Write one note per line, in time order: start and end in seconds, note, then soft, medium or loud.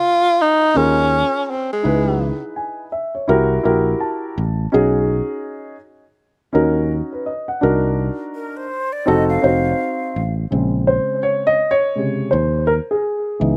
0.00 0.43 F4 loud
0.41 0.78 D#4 medium
0.74 1.22 D#2 medium
0.74 1.50 C#4 medium
0.74 1.46 C#4 medium
0.74 1.50 F4 medium
0.74 1.51 G#4 medium
0.74 1.51 A#4 medium
1.46 1.52 C#4 medium
1.51 1.72 C4 medium
1.73 2.40 G#3 medium
1.83 2.31 C#2 medium
1.83 2.85 D#4 medium
1.83 2.85 E4 medium
1.83 2.86 G#4 medium
1.83 2.86 B4 medium
2.56 2.91 G#5 medium
2.92 3.14 E5 medium
3.15 3.49 C#5 medium
3.28 3.57 C2 loud
3.28 3.59 E4 medium
3.28 3.59 F#4 medium
3.28 3.59 G4 medium
3.28 3.60 A#4 loud
3.63 3.94 A#1 medium
3.63 4.39 E4 medium
3.63 4.40 F#4 medium
3.63 4.40 G4 medium
3.63 4.40 A#4 medium
3.63 3.98 E5 medium
4.00 4.69 A5 medium
4.38 4.66 A1 medium
4.72 5.20 B1 loud
4.72 5.74 C#4 medium
4.72 5.74 D#4 medium
4.72 5.75 F#4 medium
4.72 5.75 G#4 medium
6.53 7.01 D#2 medium
6.53 7.28 C#4 medium
6.53 7.29 D#4 medium
6.53 7.29 F#4 medium
6.53 6.91 A#4 medium
7.12 7.26 B4 medium
7.26 7.47 D#5 medium
7.48 7.83 F#5 medium
7.61 8.09 C2 medium
7.61 8.63 D4 medium
7.61 8.64 D#4 medium
7.61 8.64 F#4 medium
7.61 8.64 A#4 medium
8.35 8.58 A#4 medium
8.57 8.94 C5 medium
8.93 9.09 D5 medium
9.06 9.36 F1 loud
9.06 9.37 C4 medium
9.06 9.37 D#4 medium
9.06 9.38 F#4 medium
9.06 9.38 A4 loud
9.06 9.28 D#5 medium
9.29 10.34 F5 medium
9.42 9.72 F1 medium
9.42 10.18 C4 medium
9.42 10.18 D#4 medium
9.42 10.18 F#4 medium
9.42 10.18 C5 medium
10.16 10.44 A1 medium
10.51 10.98 A#1 medium
10.51 11.56 C#3 medium
10.51 11.56 G#3 soft
10.51 11.56 C4 medium
10.87 11.21 C5 medium
11.23 11.48 C#5 medium
11.47 11.72 D#5 loud
11.71 12.34 C#5 loud
11.95 12.29 C3 soft
11.95 12.28 C#3 soft
11.95 12.29 G#3 soft
12.31 12.79 D#2 medium
12.31 12.65 C5 medium
12.67 12.73 A#4 medium
12.91 13.57 G#4 medium
13.40 13.57 C#2 medium
13.40 13.57 E3 medium
13.40 13.57 B3 soft
13.40 13.57 D#4 medium